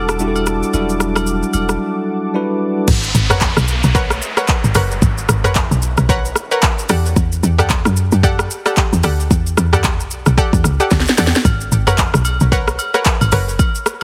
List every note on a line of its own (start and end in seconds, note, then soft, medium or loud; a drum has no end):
0.00 0.63 E1 medium
0.00 0.20 G3 medium
0.00 0.20 D4 medium
0.00 0.21 E4 medium
0.00 0.21 F#4 medium
0.00 0.28 A4 loud
0.00 2.84 A4 medium
0.00 2.84 F#5 medium
0.00 2.84 A5 medium
0.00 2.84 D6 medium
0.09 cross-stick loud
0.09 shaker soft
0.19 0.64 G3 medium
0.19 0.65 D4 medium
0.19 0.65 E4 medium
0.19 0.65 F#4 medium
0.19 0.28 G4 medium
0.19 shaker medium
0.28 0.68 A4 medium
0.36 high agogo medium
0.36 shaker soft
0.46 cross-stick medium
0.46 shaker loud
0.63 shaker soft
0.73 1.43 E1 loud
0.73 0.81 F#3 medium
0.73 1.60 D4 medium
0.73 1.60 E4 medium
0.73 1.61 F#4 medium
0.73 1.61 A4 medium
0.73 high agogo medium
0.73 shaker medium
0.80 1.63 G3 medium
0.89 shaker medium
1.00 cross-stick loud
1.00 shaker medium
1.16 cross-stick loud
1.16 high agogo medium
1.16 shaker medium
1.27 shaker medium
1.43 shaker medium
1.53 1.77 E1 medium
1.53 high agogo medium
1.53 shaker medium
1.69 cross-stick medium
1.69 shaker medium
2.34 2.79 G3 medium
2.34 2.79 D4 medium
2.34 2.79 E4 medium
2.34 2.79 F#4 medium
2.34 2.80 B4 medium
2.88 3.13 G#1 loud
2.88 kick loud
2.88 crash loud
2.88 downlifter medium
2.88 shaker medium
3.04 shaker medium
3.15 3.55 G#1 loud
3.15 shaker loud
3.30 3.40 A#4 medium
3.30 3.40 B4 medium
3.30 3.40 C#5 medium
3.30 3.40 F#5 medium
3.30 cross-stick loud
3.30 mid tom medium
3.30 shaker medium
3.41 kick medium
3.41 clap medium
3.41 shaker medium
3.57 3.82 B1 loud
3.57 cross-stick loud
3.57 shaker medium
3.68 shaker medium
3.83 4.20 B1 medium
3.83 shaker medium
3.95 4.33 A#4 medium
3.95 4.33 B4 medium
3.95 4.34 C#5 medium
3.95 4.34 F#5 loud
3.95 kick loud
3.95 shaker medium
4.10 cross-stick loud
4.10 shaker medium
4.22 shaker medium
4.37 4.72 A#4 medium
4.37 4.73 B4 medium
4.37 4.73 C#5 medium
4.37 4.73 F#5 medium
4.37 cross-stick loud
4.37 shaker medium
4.48 kick medium
4.48 clap loud
4.48 shaker medium
4.64 4.75 G#1 medium
4.64 shaker medium
4.75 5.01 F#1 loud
4.75 5.00 A#4 medium
4.75 5.00 B4 medium
4.75 5.00 C#5 medium
4.75 5.00 F#5 medium
4.75 cross-stick loud
4.75 open hi-hat medium
4.75 shaker loud
4.91 shaker medium
5.02 5.27 G#1 loud
5.02 kick loud
5.02 shaker medium
5.18 shaker medium
5.29 5.69 G#1 loud
5.29 cross-stick loud
5.29 shaker loud
5.44 5.54 A#4 medium
5.44 5.54 B4 medium
5.44 5.54 C#5 medium
5.44 5.54 F#5 medium
5.44 cross-stick loud
5.44 mid tom medium
5.44 shaker medium
5.55 kick loud
5.55 clap medium
5.55 shaker medium
5.71 5.97 B1 medium
5.71 shaker medium
5.82 shaker medium
5.97 6.34 B1 loud
5.97 cross-stick medium
5.97 shaker medium
6.09 6.48 A#4 medium
6.09 6.48 B4 medium
6.09 6.48 C#5 medium
6.09 6.48 F#5 loud
6.09 kick loud
6.09 shaker medium
6.25 shaker soft
6.36 cross-stick medium
6.36 shaker medium
6.51 6.87 A#4 medium
6.51 6.87 B4 medium
6.51 6.87 C#5 medium
6.51 6.87 F#5 medium
6.51 shaker medium
6.62 kick medium
6.62 clap loud
6.62 shaker medium
6.79 shaker medium
6.89 7.15 E2 loud
6.89 7.14 G4 medium
6.89 7.15 A4 medium
6.89 7.15 D5 medium
6.89 7.15 F#5 medium
6.89 cross-stick loud
6.89 open hi-hat medium
6.89 shaker loud
7.06 shaker medium
7.16 7.42 E2 loud
7.16 kick loud
7.16 shaker medium
7.32 shaker medium
7.43 7.83 E2 loud
7.43 shaker loud
7.58 7.68 G4 medium
7.58 7.68 A4 medium
7.58 7.68 D5 medium
7.58 7.69 F#5 medium
7.58 cross-stick loud
7.58 mid tom medium
7.58 shaker medium
7.70 kick loud
7.70 clap medium
7.70 shaker medium
7.85 8.11 F#2 loud
7.85 cross-stick loud
7.85 shaker medium
7.97 shaker medium
8.12 8.48 F#2 loud
8.12 shaker medium
8.23 8.62 G4 medium
8.23 8.62 A4 medium
8.23 8.62 D5 medium
8.23 8.62 F#5 loud
8.23 kick loud
8.23 shaker medium
8.39 cross-stick loud
8.39 shaker medium
8.51 shaker medium
8.66 9.01 G4 medium
8.66 9.01 A4 medium
8.66 9.01 D5 medium
8.66 9.01 F#5 medium
8.66 cross-stick loud
8.66 shaker medium
8.76 kick medium
8.76 clap medium
8.76 shaker medium
8.93 9.03 E2 medium
8.93 shaker medium
9.03 9.29 D2 medium
9.03 9.29 G4 medium
9.03 9.29 A4 medium
9.03 9.29 D5 medium
9.03 9.29 F#5 medium
9.03 cross-stick loud
9.03 open hi-hat medium
9.03 shaker loud
9.20 shaker medium
9.31 9.56 E2 loud
9.31 kick loud
9.31 shaker medium
9.47 shaker medium
9.57 10.01 E2 loud
9.57 cross-stick loud
9.57 shaker loud
9.73 9.82 G4 medium
9.73 9.83 A4 medium
9.73 9.83 D5 medium
9.73 9.83 F#5 medium
9.73 cross-stick loud
9.73 mid tom medium
9.73 shaker medium
9.84 kick medium
9.84 clap medium
9.84 shaker medium
10.00 10.25 B1 medium
10.00 shaker medium
10.11 shaker medium
10.26 10.37 B1 medium
10.26 cross-stick medium
10.26 shaker medium
10.38 10.76 G4 loud
10.38 10.76 A4 medium
10.38 10.76 D5 medium
10.38 10.77 F#5 loud
10.38 kick loud
10.38 shaker medium
10.53 10.64 E2 loud
10.53 kick loud
10.53 shaker soft
10.64 10.79 C#2 loud
10.64 cross-stick medium
10.64 shaker medium
10.80 11.15 G4 medium
10.80 11.15 A4 medium
10.80 11.16 D5 medium
10.80 11.16 F#5 medium
10.80 shaker medium
10.91 11.06 D2 medium
10.91 kick loud
10.91 snare medium
10.91 shaker medium
11.00 snare medium
11.07 snare medium
11.07 shaker medium
11.18 11.33 E2 loud
11.18 11.43 G4 medium
11.18 11.43 A4 medium
11.18 11.43 D5 medium
11.18 11.43 F#5 medium
11.18 snare medium
11.18 open hi-hat medium
11.18 shaker loud
11.27 snare loud
11.34 snare loud
11.34 shaker medium
11.45 11.70 G#1 loud
11.45 kick loud
11.45 high agogo medium
11.45 shaker medium
11.61 shaker medium
11.72 12.12 G#1 loud
11.72 shaker loud
11.87 11.97 A#4 medium
11.87 11.97 B4 medium
11.87 11.97 C#5 medium
11.87 11.97 F#5 medium
11.87 cross-stick loud
11.87 mid tom medium
11.87 high agogo medium
11.87 shaker medium
11.98 kick medium
11.98 clap medium
11.98 shaker medium
12.14 12.40 B1 loud
12.14 cross-stick loud
12.14 shaker medium
12.25 high agogo medium
12.25 shaker medium
12.40 12.77 B1 medium
12.40 shaker medium
12.52 12.91 A#4 loud
12.52 12.91 B4 medium
12.52 12.91 C#5 medium
12.52 12.91 F#5 loud
12.52 kick loud
12.52 shaker medium
12.68 cross-stick loud
12.68 shaker soft
12.79 high agogo medium
12.79 shaker medium
12.94 13.30 A#4 medium
12.94 13.30 B4 medium
12.94 13.30 C#5 medium
12.94 13.30 F#5 medium
12.94 cross-stick medium
12.94 shaker medium
13.05 kick loud
13.05 clap loud
13.05 shaker medium
13.21 13.32 G#1 medium
13.21 high agogo medium
13.21 shaker medium
13.32 13.58 F#1 loud
13.32 13.57 A#4 medium
13.32 13.57 B4 medium
13.32 13.57 C#5 medium
13.32 13.58 F#5 medium
13.32 cross-stick loud
13.32 open hi-hat medium
13.32 shaker loud
13.49 shaker medium
13.59 kick loud
13.59 high agogo medium
13.59 shaker medium
13.75 shaker medium
13.86 cross-stick loud
13.86 shaker loud